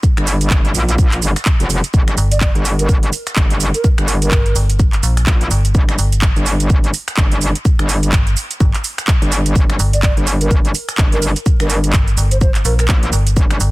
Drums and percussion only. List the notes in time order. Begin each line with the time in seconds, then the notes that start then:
0.03 kick, shaker
0.17 finger snap, closed hi-hat, shaker
0.27 open hi-hat, shaker
0.41 closed hi-hat, shaker
0.50 kick, clap, shaker
0.65 closed hi-hat, shaker
0.75 open hi-hat, shaker
0.89 closed hi-hat, shaker
0.98 kick, shaker
1.12 clap, closed hi-hat, shaker
1.22 open hi-hat, shaker
1.36 finger snap, closed hi-hat, shaker
1.45 kick, clap, shaker
1.60 closed hi-hat, shaker
1.70 open hi-hat, shaker
1.84 closed hi-hat, shaker
1.94 kick, shaker
2.08 finger snap, closed hi-hat, shaker
2.18 open hi-hat, shaker
2.32 closed hi-hat, shaker
2.41 kick, clap, shaker
2.55 closed hi-hat, shaker
2.65 open hi-hat, shaker
2.79 closed hi-hat, shaker
2.89 kick, shaker
3.03 closed hi-hat, shaker
3.13 open hi-hat, shaker
3.27 finger snap, closed hi-hat, shaker
3.36 kick, clap, shaker
3.50 closed hi-hat, shaker
3.60 open hi-hat, shaker
3.74 closed hi-hat, shaker
3.84 kick, shaker
3.98 finger snap, closed hi-hat, shaker
4.08 open hi-hat, shaker
4.22 closed hi-hat, shaker
4.31 kick, clap, shaker
4.46 closed hi-hat, shaker
4.56 open hi-hat, shaker
4.70 closed hi-hat, shaker
4.79 kick, shaker
4.93 clap, closed hi-hat, shaker
5.03 open hi-hat, shaker
5.17 finger snap, closed hi-hat, shaker
5.26 kick, clap, shaker
5.41 closed hi-hat, shaker
5.51 open hi-hat, shaker
5.65 closed hi-hat, shaker
5.75 kick, shaker
5.89 finger snap, closed hi-hat, shaker
5.99 open hi-hat, shaker
6.12 closed hi-hat, shaker
6.22 kick, clap, shaker
6.36 closed hi-hat, shaker
6.46 open hi-hat, shaker
6.60 closed hi-hat, shaker
6.70 kick, shaker
6.84 closed hi-hat, shaker
6.94 open hi-hat, shaker
7.08 finger snap, closed hi-hat, shaker
7.17 kick, clap, shaker
7.32 closed hi-hat, shaker
7.41 open hi-hat, shaker
7.55 closed hi-hat, shaker
7.65 kick, shaker
7.79 finger snap, closed hi-hat, shaker
7.89 open hi-hat, shaker
8.03 closed hi-hat, shaker
8.12 kick, clap, shaker
8.27 closed hi-hat, shaker
8.37 open hi-hat, shaker
8.51 closed hi-hat, shaker
8.60 kick, shaker
8.74 clap, closed hi-hat, shaker
8.84 open hi-hat, shaker
8.98 finger snap, closed hi-hat, shaker
9.08 kick, clap, shaker
9.22 closed hi-hat, shaker
9.32 open hi-hat, shaker
9.46 closed hi-hat, shaker
9.56 kick, shaker
9.70 finger snap, closed hi-hat, shaker
9.79 open hi-hat, shaker
9.93 closed hi-hat, shaker
10.03 kick, clap, shaker
10.17 closed hi-hat, shaker
10.27 open hi-hat, shaker
10.41 closed hi-hat, shaker
10.51 kick, shaker
10.65 closed hi-hat, shaker
10.75 open hi-hat, shaker
10.89 finger snap, closed hi-hat, shaker
10.98 kick, clap, shaker
11.12 closed hi-hat, shaker
11.22 open hi-hat, shaker
11.36 closed hi-hat, shaker
11.46 kick, shaker
11.60 finger snap, closed hi-hat, shaker
11.70 open hi-hat, shaker
11.84 closed hi-hat, shaker
11.93 kick, clap, shaker
12.08 closed hi-hat, shaker
12.17 open hi-hat, shaker
12.31 closed hi-hat, shaker
12.41 kick, shaker
12.55 clap, closed hi-hat, shaker
12.65 open hi-hat, shaker
12.79 finger snap, closed hi-hat, shaker
12.88 kick, clap, shaker
13.03 closed hi-hat, shaker
13.13 open hi-hat, shaker
13.27 closed hi-hat, shaker
13.37 kick, shaker
13.51 finger snap, closed hi-hat, shaker
13.60 open hi-hat, shaker